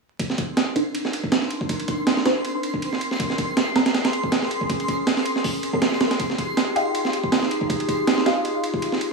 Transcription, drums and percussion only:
0.20 kick, ride
0.30 snare
0.38 kick, ride
0.57 snare, ride
0.76 ride
0.95 ride
1.05 snare
1.13 ride
1.23 kick
1.32 snare, ride
1.42 snare
1.50 ride
1.61 kick
1.69 kick, ride
1.80 ride
1.88 kick, ride
2.07 snare, ride
2.17 snare
2.26 snare, ride
2.45 ride
2.63 ride
2.74 kick
2.82 ride
2.93 snare
3.01 ride
3.11 snare
3.20 kick, ride
3.30 snare
3.38 kick, ride
3.57 snare, ride
3.76 snare, ride
3.86 snare, ride
3.95 snare, ride
4.05 snare, ride
4.13 ride
4.24 kick
4.32 snare, ride
4.42 snare
4.51 ride
4.61 kick
4.69 kick, ride
4.80 ride
4.88 kick, ride
5.07 snare, ride
5.17 snare
5.26 ride
5.36 snare
5.44 kick, open hi-hat
5.63 ride
5.73 kick
5.82 snare, ride
5.92 snare
6.01 snare, ride
6.11 snare, ride
6.19 kick, ride
6.30 snare
6.38 kick, ride
6.57 snare, ride
6.76 ride
6.95 ride
7.05 snare
7.13 ride
7.24 kick
7.32 snare, ride
7.43 snare
7.51 ride
7.61 kick
7.70 kick, ride
7.80 ride
7.88 kick, ride
8.07 snare, ride
8.18 snare
8.26 snare, ride
8.45 ride
8.64 ride
8.74 kick
8.82 ride
8.92 snare
9.01 ride

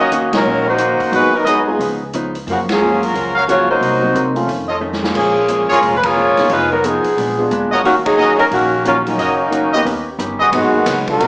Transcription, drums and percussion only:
0.12 closed hi-hat
0.33 snare, ride
0.78 closed hi-hat
1.00 kick, open hi-hat
1.13 open hi-hat
1.47 closed hi-hat
1.80 open hi-hat
2.13 closed hi-hat
2.35 open hi-hat
2.47 open hi-hat
2.69 snare, ride
3.03 open hi-hat
3.15 open hi-hat
3.49 closed hi-hat
3.82 open hi-hat
4.15 closed hi-hat
4.36 open hi-hat
4.49 open hi-hat
4.93 snare
5.04 snare
5.15 kick, crash
5.48 closed hi-hat
5.69 open hi-hat
5.82 open hi-hat
6.03 kick, ride
6.37 snare, open hi-hat
6.49 open hi-hat
6.84 closed hi-hat
7.04 open hi-hat
7.18 open hi-hat
7.51 closed hi-hat
7.85 open hi-hat
8.06 kick, ride
8.39 open hi-hat
8.51 open hi-hat
8.85 closed hi-hat
9.06 open hi-hat
9.19 open hi-hat
9.52 closed hi-hat
9.74 open hi-hat
9.86 open hi-hat
10.19 closed hi-hat
10.53 ride
10.86 snare, hi-hat pedal, ride
11.07 kick, ride
11.20 ride

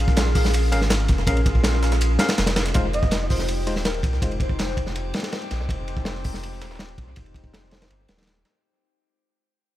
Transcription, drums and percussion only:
0.08 kick, snare
0.17 snare, closed hi-hat, ride
0.26 snare
0.35 kick, closed hi-hat, open hi-hat
0.45 snare
0.54 closed hi-hat, ride
0.72 closed hi-hat, ride
0.81 snare
0.90 snare, closed hi-hat, ride
1.00 ride
1.08 kick, snare, closed hi-hat, ride
1.18 snare
1.27 kick, closed hi-hat, ride
1.37 closed hi-hat, ride
1.46 kick, closed hi-hat, ride
1.55 kick
1.64 snare, closed hi-hat, ride
1.73 snare
1.83 snare, closed hi-hat
1.92 snare, closed hi-hat
2.01 closed hi-hat, ride
2.19 snare, closed hi-hat, ride
2.29 snare, closed hi-hat, ride
2.38 snare, closed hi-hat, ride
2.46 snare, closed hi-hat, ride
2.56 snare, closed hi-hat, ride
2.65 snare, closed hi-hat, ride
2.74 kick, closed hi-hat, ride
2.93 closed hi-hat, ride
3.03 kick, snare
3.11 snare, closed hi-hat, ride
3.20 snare
3.30 kick, closed hi-hat, open hi-hat
3.39 snare
3.48 closed hi-hat, ride
3.67 closed hi-hat, ride
3.76 snare
3.85 snare, closed hi-hat, ride
3.94 ride
4.03 kick, snare, closed hi-hat, ride
4.13 snare
4.22 kick, closed hi-hat, ride
4.31 closed hi-hat, ride
4.40 kick, closed hi-hat, ride
4.49 kick
4.59 snare, closed hi-hat, ride
4.68 snare
4.77 kick, closed hi-hat, ride
4.87 snare
4.95 closed hi-hat, ride
5.14 snare, closed hi-hat, ride
5.19 snare, ride
5.23 snare, ride
5.32 snare, open hi-hat, ride
5.42 closed hi-hat, ride
5.51 snare, closed hi-hat, ride
5.61 snare
5.69 kick, closed hi-hat, ride
5.88 closed hi-hat, ride
5.97 kick, snare
6.05 snare, closed hi-hat, ride
6.15 snare
6.24 kick, closed hi-hat, open hi-hat
6.34 snare
6.43 closed hi-hat, ride
6.52 snare
6.61 snare, closed hi-hat, ride
6.71 snare, closed hi-hat
6.75 snare, closed hi-hat
6.79 snare, closed hi-hat, ride
6.88 ride
6.98 kick, snare, closed hi-hat, ride
7.08 snare
7.16 kick, closed hi-hat, ride
7.26 closed hi-hat, ride
7.34 kick, closed hi-hat, ride
7.44 kick
7.53 snare, closed hi-hat, ride
7.63 snare
7.71 snare, closed hi-hat, ride
7.82 snare, ride
7.90 snare, closed hi-hat, ride
8.08 snare, ride
8.18 snare, ride
8.22 snare, ride
8.27 snare, ride
8.36 ride
8.45 snare, ride

